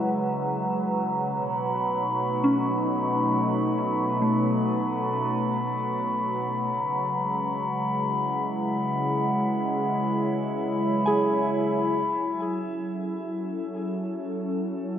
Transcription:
Already playing: C#3 F#3 G#3 E4 B4
1.28 B2 B5
1.75 A3
1.80 D#4
2.44 C#4
4.22 A3
6.68 C#3
7.04 G#3
7.94 E4
11.06 G#4 G#5
12.06 F#3
12.31 C#4
12.64 A4

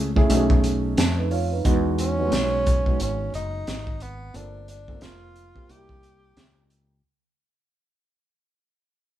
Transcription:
Already playing: C#2
0.16 A3 C#4 E4 G#4, kick
0.29 B1 A3 C#4 D#4 F#4, closed hi-hat
0.37 G#4
0.50 kick
0.64 closed hi-hat
0.97 F2 A5, snare, closed hi-hat
1.18 D#4 B4
1.31 F4 C#5 F5, open hi-hat
1.52 D#4 B4
1.65 E2 G#3 B3 D#4 F#4, kick, closed hi-hat
1.98 C#4, closed hi-hat
2.18 G3 B3 D#4 F#4
2.25 G#3
2.32 B1, snare, closed hi-hat
2.66 kick, closed hi-hat
2.86 G#3 B3 D#4 F#4, kick
2.99 G#1 C#4, closed hi-hat
3.33 F#1 D#4, closed hi-hat
3.67 G#1, snare, closed hi-hat
3.87 kick
4.00 B3, closed hi-hat
4.34 G1 A#3 C4 D4 F4 A4, closed hi-hat
4.68 D4, closed hi-hat
4.88 A3 C4 F4 A4, kick
4.94 A#3
5.01 F1 F4, snare, closed hi-hat
5.36 closed hi-hat
5.55 A#3 C4 F4 G4, kick
5.69 C2 A#3 D4 E4 F#4 G4, closed hi-hat
5.76 G4
5.89 kick
6.03 closed hi-hat
6.37 C#2, snare, closed hi-hat
6.70 closed hi-hat

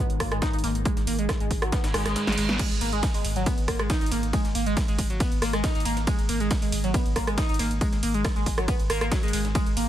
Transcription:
Already playing: G#2 D#3
0.10 G#1, closed hi-hat
0.20 G#1 A#3, kick, cross-stick, closed hi-hat, open hi-hat
0.32 G#1 G#3, cross-stick, closed hi-hat
0.42 D#4, kick, snare, closed hi-hat
0.53 G#1 D#4, closed hi-hat
0.59 closed hi-hat
0.64 G#1 A#3, snare, closed hi-hat, open hi-hat
0.75 G#1, closed hi-hat
0.85 G#3, kick, closed hi-hat
0.97 G#1, snare, closed hi-hat
1.07 G#1 A#3, closed hi-hat, open hi-hat
1.19 G#1 G#3, closed hi-hat
1.29 kick, cross-stick, snare, closed hi-hat
1.40 G#1 G#3, closed hi-hat
1.51 G#1, kick, closed hi-hat, open hi-hat
1.62 G#1 F#3, cross-stick, closed hi-hat
1.72 B3, kick, snare, closed hi-hat, reverse cymbal
1.84 G#1, snare, closed hi-hat
1.94 G#1 G#3, cross-stick, snare, closed hi-hat, open hi-hat
2.06 G#1 G#3, cross-stick, snare, closed hi-hat
2.16 G#3, snare, closed hi-hat
2.27 G#1 G#3, snare, closed hi-hat
2.32 closed hi-hat
2.38 G#1 G#3, closed hi-hat, open hi-hat
2.49 G#1 B3, snare, closed hi-hat
2.59 G#3, kick, closed hi-hat, ride, crash
2.71 G#1, closed hi-hat
2.81 G#1 A#3, closed hi-hat, open hi-hat
2.93 G#1 G#3, closed hi-hat
3.03 kick, snare, closed hi-hat, ride
3.14 G#1 G#3, open hi-hat
3.25 G#1, closed hi-hat, open hi-hat
3.36 G#1 F#3, closed hi-hat
3.46 B3, kick, closed hi-hat, ride
3.58 G#1, closed hi-hat
3.68 G#1 A#3, kick, cross-stick, closed hi-hat, open hi-hat
3.79 G#1 G#3, cross-stick, closed hi-hat
3.90 D#4, kick, snare, closed hi-hat, ride
4.01 G#1 D#4, closed hi-hat
4.06 closed hi-hat
4.12 G#1 A#3, snare, closed hi-hat, open hi-hat
4.23 G#1, closed hi-hat
4.33 G#3, kick, closed hi-hat, ride
4.45 G#1, snare, closed hi-hat
4.55 G#1 A#3, closed hi-hat, open hi-hat
4.66 G#1 G#3, closed hi-hat
4.77 kick, snare, closed hi-hat, ride
4.88 G#1 G#3, closed hi-hat
4.99 G#1, kick, closed hi-hat, open hi-hat
5.10 G#1 F#3, closed hi-hat
5.20 B3, kick, closed hi-hat, ride
5.32 G#1, closed hi-hat
5.42 G#1 A#3, cross-stick, closed hi-hat, open hi-hat
5.53 G#1 G#3, cross-stick, closed hi-hat
5.64 D#4, kick, snare, closed hi-hat, ride
5.75 G#1 D#4, closed hi-hat
5.80 closed hi-hat
5.85 G#1 A#3, closed hi-hat, open hi-hat
5.97 G#1, snare, closed hi-hat
6.07 G#3, kick, closed hi-hat, ride
6.19 G#1, closed hi-hat
6.29 G#1 A#3, closed hi-hat, open hi-hat
6.40 G#1 G#3, closed hi-hat
6.51 kick, snare, closed hi-hat, ride
6.62 G#1 G#3, open hi-hat
6.72 G#1, closed hi-hat, open hi-hat
6.84 G#1 F#3, closed hi-hat
6.94 B3, kick, closed hi-hat, ride
7.06 G#1, closed hi-hat
7.16 G#1 A#3, kick, cross-stick, closed hi-hat, open hi-hat
7.27 G#1 G#3, cross-stick, closed hi-hat
7.38 D#4, kick, snare, closed hi-hat, ride
7.49 G#1 D#4, closed hi-hat
7.54 closed hi-hat
7.59 G#1 A#3, snare, closed hi-hat, open hi-hat
7.71 G#1, closed hi-hat
7.81 G#3, kick, closed hi-hat, ride
7.93 G#1, snare, closed hi-hat
8.03 G#1 A#3, closed hi-hat, open hi-hat
8.14 G#1 G#3, closed hi-hat
8.24 kick, cross-stick, snare, closed hi-hat, ride
8.36 G#1 G#3, closed hi-hat
8.46 G#1, kick, closed hi-hat, open hi-hat
8.58 G#1 F#3, cross-stick, closed hi-hat
8.68 B3, kick, closed hi-hat, ride
8.80 G#1, closed hi-hat
8.90 G#1 A#3, cross-stick, closed hi-hat, open hi-hat
9.01 G#1 A#3, cross-stick, closed hi-hat
9.12 F#3, kick, snare, closed hi-hat, ride
9.23 G#1 G#3, closed hi-hat
9.28 closed hi-hat
9.33 G#1 G#3, closed hi-hat, open hi-hat
9.45 G#1, snare, closed hi-hat
9.55 G#3, kick, closed hi-hat, ride
9.66 G#1, closed hi-hat
9.77 G#1 A#3, closed hi-hat, open hi-hat

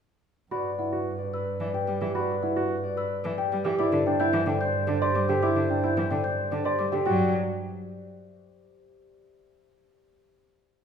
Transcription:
0.51 G2 F#4 B4 D5 B5
0.79 E4 F#5
0.92 F#4
1.19 D5
1.34 B4 E6
1.60 E3 D5
1.74 G4 G5
1.88 G3
2.01 E3 G4 E5
2.15 F#4 D5 B5
2.43 E4 F#5
2.56 F#4
2.84 D5
2.97 B4 E6
3.24 E3 D5
3.38 G4 G5
3.52 G3
3.65 E3 G4 E5
3.78 G2 E4 C5 D5 D6
3.92 D3
4.06 D4 C5 G5
4.20 E4 G5 G6
4.33 E3
4.46 D3 D5 G5
4.61 C5 G6
4.87 D3 D4 D5
5.02 G4 D5 C6
5.15 G3 D6
5.29 D3 G4 E5 G5
5.43 E4 D5 D6
5.56 D3
5.69 D4 C5 G5
5.83 E4 G5 G6
5.97 E3
6.11 D3 D5 G5
6.23 C5 G6
6.51 D3 D4 D5
6.64 G4 D5 C6
6.79 G3 D6
6.92 D3 G4 E5 G5
7.06 G2 F#3 F#4 D5 G5

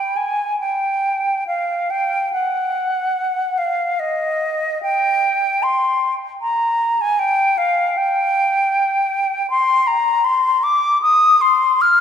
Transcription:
Already playing: G5
0.16 G#5
0.59 G5
1.47 F5
1.90 G5
2.32 F#5
3.57 F5
3.99 D#5
4.82 G5
5.62 C6
6.41 A#5
7.01 G#5
7.19 G5
7.57 F5
7.97 G5
9.50 C6
9.87 A#5
10.24 C6
10.63 D6
11.02 D#6
11.41 C6
11.81 F6

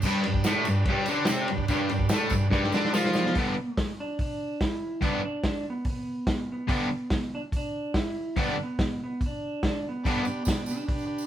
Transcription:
0.02 G2 D4 G4 B4, kick, crash, tambourine
0.06 G3
0.24 G2, ride
0.29 D4 G4 B4
0.34 kick
0.44 A2 A3, snare, ride, tambourine
0.51 D4 G4 B4
0.65 G2, ride, tambourine
0.69 D4 G4 B4
0.85 G2, kick, ride
0.90 G3 D4 G4 B4
1.06 D3, ride, tambourine
1.10 D4 G4 B4
1.25 snare, ride, tambourine
1.29 C3 C4 D4 G4 A4
1.47 G2 D4 G4 B4, ride
1.58 kick
1.68 G2 G3 D4 G4, kick, ride, tambourine
1.72 B4
1.89 G2 D4 G4 B4, ride, tambourine
1.99 kick
2.09 A2 D4 G4 A4, snare, ride, tambourine
2.13 A3
2.28 G2 D4 G4 B4, kick, ride, tambourine
2.51 G2 G3 D4 G4 B4, kick, snare, tambourine
2.64 snare
2.71 D3 D4 G4 B4, snare, tambourine
2.85 snare
2.91 F3 D4 F4 G4 B4, snare, tambourine
3.05 snare
3.13 B3 D4 G4 B4, snare, tambourine
3.26 snare
3.35 G2 D3 G3 B3, kick, open hi-hat
3.39 D4
3.73 A3
3.77 kick, snare, open hi-hat
4.00 D4
4.19 D4, kick, open hi-hat
4.61 E4, kick, snare, open hi-hat
5.01 G2 D3 G3 B3 D4, kick, open hi-hat
5.25 D4
5.44 D4, kick, snare, open hi-hat
5.70 B3
5.85 kick, open hi-hat
5.90 B3
6.27 kick, snare, open hi-hat
6.52 B3
6.67 G2 D3 G3 B3 D4, kick, open hi-hat
7.10 kick, snare, open hi-hat
7.35 D4
7.52 kick, open hi-hat
7.57 D4
7.94 E4, kick, snare, open hi-hat
8.36 G2 D3 G3 B3 D4, kick, open hi-hat
8.41 D4
8.63 B3
8.79 kick, snare, open hi-hat
9.04 B3
9.21 kick, open hi-hat
9.26 D4
9.63 kick, snare, open hi-hat
9.68 D4
9.89 B3
10.04 G2 D3 D4 G4 B4, kick, open hi-hat, tambourine
10.08 G3 B3 D4
10.25 D4 G4 B4, tambourine
10.45 D4 G4 B4, kick, snare, open hi-hat, tambourine
10.57 tambourine
10.65 D4 G4 B4, tambourine
10.71 D4
10.77 tambourine
10.86 D4 G4 B4, kick, open hi-hat
10.99 tambourine
11.06 D4 G4 B4
11.18 tambourine

